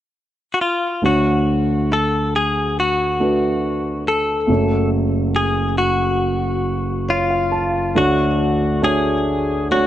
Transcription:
0.54 clean electric guitar F#4
0.61 clean electric guitar F4
1.02 grand piano D2 D3 A3 D4 F#4 C#5, clean electric guitar F#4
1.93 clean electric guitar A4
2.36 clean electric guitar G#4
2.80 clean electric guitar F#4
3.20 grand piano A3 D4 F#4 B4
4.08 clean electric guitar A4
4.47 grand piano F#1 F#2 F#3 A3
4.51 grand piano C#5
5.36 clean electric guitar G#4
5.78 clean electric guitar F#4
7.09 clean electric guitar F4, grand piano C#5
7.30 grand piano F5
7.52 grand piano A5
7.95 grand piano D2 D3 A3 D4 F#4 C#5, clean electric guitar F#4
8.82 grand piano A3 D4 F#4 C#5, clean electric guitar G#4
9.71 grand piano A3 D4 F#4 C#5, clean electric guitar F#4

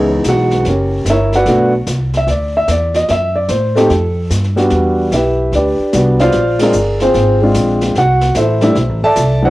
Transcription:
Already playing: upright bass C#2, upright piano E3 G#3 B3 D#4
0.24 upright bass B1, snare, hi-hat pedal
0.29 upright piano F#4 F#5
0.51 snare
0.65 upright bass F#1, upright piano C#4 G4 A#4 C#5, brush sweep, snare
1.05 upright bass G1, snare, hi-hat pedal
1.10 upright piano E4 A#4 C#5 E5
1.32 upright piano B4 D5 F#5, snare
1.37 upright piano F#4
1.46 upright bass B1, upright piano A3 B3 D4 F#4, brush sweep, snare
1.87 upright bass C2, snare, hi-hat pedal
2.14 upright piano E5, snare
2.27 upright bass D2, upright piano D5, brush sweep, snare
2.57 upright piano E5
2.68 upright bass E2, upright piano D5, snare, hi-hat pedal
2.94 upright piano D#5, snare
3.08 upright bass F#2, upright piano E5, brush sweep, snare
3.36 upright piano D5
3.48 upright bass A2, upright piano C5, snare, hi-hat pedal
3.75 upright piano A3 C4 D#4 G4 A4, snare
3.90 upright bass F2, brush sweep, snare
4.30 upright bass G2, snare, hi-hat pedal
4.44 snare
4.56 upright piano G3 B3 D4 F#4, snare
4.70 upright bass E2, brush sweep, snare
5.11 upright bass B1, upright piano E4 G4 B4 E5, snare, hi-hat pedal
5.52 upright bass D2, upright piano D4 G4 B4 D5, brush sweep, snare
5.79 muted upright bass stroke
5.93 upright bass C2, upright piano G3 B3 D4 F#4, snare, hi-hat pedal
6.19 upright piano F4 C5 D5 F5, snare
6.32 upright bass A#1, brush sweep, snare
6.59 upright piano G#3 C4 D4 F4 G#4 A#4 D5, snare, ride
6.73 upright bass G1, hi-hat pedal
7.00 upright piano C4 F4 G#4 C5, snare
7.14 upright bass G#1, brush sweep, snare
7.41 upright piano G#3 C4 D4 F4
7.54 upright bass A#1, snare, hi-hat pedal
7.81 snare
7.95 upright bass C2, upright piano F#4 F#5, brush sweep, snare
8.21 snare
8.35 upright bass A1, upright piano E4 A4 C5 E5, snare, hi-hat pedal
8.61 upright piano G3 A3 D4 E4, snare
8.75 upright bass B1, brush sweep, snare
8.89 upright bass A1
9.03 upright bass G1, upright piano A4 D5 E5 A5
9.16 upright bass C2, snare, hi-hat pedal
9.42 upright piano F#3 B3 C4 E4 F#4 C5 D5 F#5

